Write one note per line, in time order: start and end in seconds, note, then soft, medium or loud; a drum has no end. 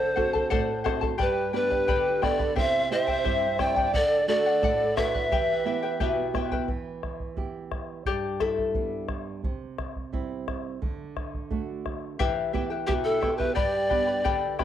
0.00 0.49 D3 medium
0.00 0.16 A4 medium
0.00 0.81 A4 medium
0.00 0.15 C5 medium
0.00 0.80 C5 medium
0.00 0.16 D5 medium
0.00 0.14 F#5 medium
0.00 0.16 A5 medium
0.16 0.71 C4 soft
0.16 0.72 D4 soft
0.16 0.72 F#4 medium
0.16 0.33 A4 medium
0.16 0.34 C5 medium
0.16 0.33 F#5 medium
0.16 0.32 A5 medium
0.16 bombo low medium
0.33 0.49 A4 medium
0.33 0.50 C5 soft
0.33 0.50 A5 medium
0.33 bombo low soft
0.50 1.17 A2 medium
0.50 0.84 A4 medium
0.50 0.83 C5 loud
0.50 0.85 D5 medium
0.50 0.83 F#5 medium
0.50 0.84 A5 medium
0.50 bombo low medium
0.84 1.13 C4 soft
0.84 1.13 D4 soft
0.84 1.13 F#4 medium
0.84 1.00 A4 medium
0.84 1.01 C5 medium
0.84 1.02 F#5 medium
0.84 1.00 A5 medium
0.84 bombo rim medium
0.84 bombo low medium
1.01 1.18 A4 soft
1.01 1.18 C5 soft
1.01 1.18 A5 medium
1.01 bombo low medium
1.18 1.86 G2 medium
1.18 1.53 G4 medium
1.18 1.52 G4 medium
1.18 1.53 B4 medium
1.18 1.52 B4 medium
1.18 1.53 D5 medium
1.18 1.52 G5 medium
1.18 1.53 B5 medium
1.18 bombo low medium
1.53 2.08 B3 medium
1.53 2.08 D4 soft
1.53 2.09 G4 medium
1.53 2.25 G4 medium
1.53 1.71 B4 soft
1.53 2.25 B4 medium
1.53 1.70 D5 medium
1.53 1.71 G5 medium
1.53 1.69 B5 medium
1.70 1.87 B4 soft
1.70 1.87 D5 soft
1.70 1.88 B5 soft
1.70 bombo low soft
1.88 2.55 D3 medium
1.88 2.22 G4 medium
1.88 2.21 B4 medium
1.88 2.22 D5 medium
1.88 2.21 G5 medium
1.88 2.22 B5 medium
1.88 bombo low medium
2.22 2.50 B3 soft
2.22 2.50 D4 soft
2.22 2.50 G4 medium
2.22 2.57 A4 medium
2.22 2.39 B4 medium
2.22 2.38 D5 medium
2.22 2.57 D5 medium
2.22 2.39 G5 medium
2.22 2.38 B5 medium
2.22 bombo rim medium
2.22 bombo low medium
2.39 2.56 B4 soft
2.39 2.56 D5 soft
2.39 2.56 B5 soft
2.39 bombo low medium
2.56 3.23 C3 medium
2.56 2.90 E4 medium
2.56 2.90 G4 medium
2.56 2.90 C5 medium
2.56 2.89 C5 medium
2.56 2.89 E5 medium
2.56 2.89 E5 loud
2.56 2.91 G5 medium
2.56 bombo low medium
2.91 3.46 C4 soft
2.91 3.08 E4 medium
2.91 3.46 E4 soft
2.91 3.46 G4 medium
2.91 3.07 C5 medium
2.91 3.62 C5 medium
2.91 3.08 E5 soft
2.91 3.61 E5 loud
2.91 3.06 G5 medium
3.07 3.23 E4 soft
3.07 3.24 C5 soft
3.07 3.24 G5 medium
3.07 bombo low soft
3.24 3.92 G2 medium
3.24 3.58 E4 medium
3.24 3.59 G4 medium
3.24 3.58 C5 medium
3.24 3.57 E5 medium
3.24 3.58 G5 medium
3.24 bombo low medium
3.58 3.87 C4 soft
3.58 3.76 E4 medium
3.58 3.87 E4 soft
3.58 3.87 G4 medium
3.58 3.76 C5 medium
3.58 3.98 D5 medium
3.58 3.76 E5 medium
3.58 3.75 G5 medium
3.58 3.96 G5 loud
3.58 bombo rim medium
3.58 bombo low medium
3.76 3.94 E4 soft
3.76 3.93 C5 soft
3.76 3.94 G5 medium
3.76 bombo low medium
3.94 4.60 D3 medium
3.94 4.27 A4 medium
3.94 4.28 A4 medium
3.94 4.28 D5 medium
3.94 4.28 D5 loud
3.94 4.28 F#5 medium
3.94 bombo low medium
4.28 4.83 A3 medium
4.28 4.83 D4 soft
4.28 4.83 F#4 medium
4.28 4.99 A4 medium
4.28 4.45 A4 medium
4.28 4.98 D5 loud
4.28 4.46 D5 medium
4.28 4.45 F#5 medium
4.46 4.62 D5 soft
4.46 4.63 F#5 medium
4.62 5.29 A2 medium
4.62 4.96 A4 medium
4.62 4.96 D5 medium
4.62 4.97 F#5 medium
4.62 bombo low medium
4.97 5.24 A3 soft
4.97 5.24 D4 soft
4.97 5.25 F#4 soft
4.97 5.14 A4 medium
4.97 6.35 B4 medium
4.97 5.14 D5 medium
4.97 6.34 E5 loud
4.97 5.13 F#5 medium
4.97 bombo rim medium
4.97 bombo low medium
5.14 5.32 D5 soft
5.14 5.31 F#5 medium
5.14 bombo low medium
5.31 5.98 E3 medium
5.31 5.65 E4 medium
5.31 5.66 G4 medium
5.31 5.65 B4 medium
5.31 5.64 E5 medium
5.31 5.66 G5 medium
5.31 bombo low medium
5.65 6.20 B3 soft
5.65 6.20 E4 soft
5.65 5.83 E4 medium
5.65 6.21 G4 soft
5.65 5.82 B4 medium
5.65 5.83 E5 medium
5.65 5.81 G5 medium
5.82 6.00 E4 soft
5.82 6.00 B4 medium
5.82 6.00 G5 medium
6.00 6.67 B2 medium
6.00 6.34 E4 medium
6.00 6.34 G4 medium
6.00 6.35 B4 loud
6.00 6.34 E5 medium
6.00 6.35 G5 medium
6.00 bombo low medium
6.34 6.61 B3 soft
6.34 6.62 E4 soft
6.34 6.52 E4 medium
6.34 6.62 G4 soft
6.34 6.51 B4 medium
6.34 6.52 E5 medium
6.34 6.50 G5 medium
6.34 bombo rim medium
6.34 bombo low medium
6.51 6.69 E4 soft
6.51 6.69 B4 medium
6.51 6.69 G5 soft
6.51 bombo low medium
6.68 8.02 E3 medium
6.68 bombo low medium
7.03 bombo rim soft
7.03 bombo low soft
7.20 bombo low soft
7.36 8.04 B3 soft
7.36 8.04 E4 soft
7.36 8.04 G4 soft
7.36 bombo low medium
7.71 bombo rim soft
7.71 bombo low medium
8.06 9.40 G2 medium
8.06 8.42 G4 medium
8.06 8.39 D5 medium
8.06 bombo low medium
8.40 9.06 E4 medium
8.40 9.05 A4 medium
8.40 bombo rim soft
8.40 bombo low soft
8.58 bombo low soft
8.74 9.42 G3 soft
8.74 9.42 B3 soft
8.74 9.42 D4 soft
8.74 bombo low medium
9.08 bombo rim medium
9.08 bombo low medium
9.44 10.78 C3 medium
9.44 bombo low medium
9.79 bombo rim soft
9.79 bombo low medium
9.96 bombo low soft
10.13 10.79 G3 soft
10.13 10.80 C4 soft
10.13 10.80 E4 soft
10.13 bombo low medium
10.48 bombo rim medium
10.48 bombo low soft
10.82 12.15 D3 medium
10.82 bombo low medium
11.17 bombo rim soft
11.17 bombo low soft
11.34 bombo low soft
11.51 12.17 A3 soft
11.51 12.17 D4 soft
11.51 12.18 F#4 soft
11.51 bombo low medium
11.86 bombo rim soft
11.86 bombo low soft
12.19 12.86 E3 medium
12.19 12.53 E4 medium
12.19 12.53 G4 medium
12.19 12.53 B4 medium
12.19 12.52 E5 medium
12.19 12.54 G5 medium
12.19 bombo low medium
12.53 13.08 B3 soft
12.53 13.08 E4 soft
12.53 12.70 E4 medium
12.53 13.09 G4 medium
12.53 12.70 B4 medium
12.53 12.70 E5 medium
12.53 12.69 G5 medium
12.53 bombo low medium
12.70 12.86 E4 soft
12.70 12.87 B4 soft
12.70 12.87 G5 soft
12.87 13.54 B2 medium
12.87 13.20 E4 medium
12.87 12.96 E4 medium
12.87 12.93 G4 medium
12.87 13.22 G4 medium
12.87 13.20 B4 medium
12.87 13.20 E5 medium
12.87 13.21 G5 medium
12.87 bombo low medium
13.04 13.37 E4 medium
13.04 13.36 A4 medium
13.21 13.50 B3 soft
13.21 13.38 E4 medium
13.21 13.50 E4 soft
13.21 13.50 G4 medium
13.21 13.37 B4 medium
13.21 13.39 E5 medium
13.21 13.37 G5 medium
13.21 bombo rim soft
13.21 bombo low medium
13.37 13.55 E4 soft
13.37 13.54 G4 medium
13.37 13.54 B4 medium
13.37 13.54 B4 soft
13.37 13.54 G5 medium
13.37 bombo low medium
13.55 14.23 G2 medium
13.55 14.54 G4 medium
13.55 13.90 G4 medium
13.55 13.89 B4 medium
13.55 14.54 D5 loud
13.55 13.89 D5 medium
13.55 13.88 G5 medium
13.55 13.90 B5 medium
13.55 bombo low medium
13.89 14.45 B3 medium
13.89 14.45 D4 soft
13.89 14.46 G4 medium
13.89 14.07 B4 medium
13.89 14.07 D5 medium
13.89 14.07 G5 medium
13.89 14.06 B5 medium
13.89 bombo low medium
14.07 14.23 B4 soft
14.07 14.24 D5 soft
14.07 14.24 B5 soft
14.24 14.64 D3 medium
14.24 14.59 G4 medium
14.24 14.58 B4 medium
14.24 14.58 D5 medium
14.24 14.58 G5 medium
14.24 14.59 B5 medium
14.24 bombo low medium
14.59 14.64 B3 soft
14.59 14.64 D4 soft
14.59 14.64 G4 medium
14.59 14.64 B4 medium
14.59 14.64 D5 medium
14.59 14.64 G5 medium
14.59 14.64 B5 medium
14.59 bombo rim medium
14.59 bombo low medium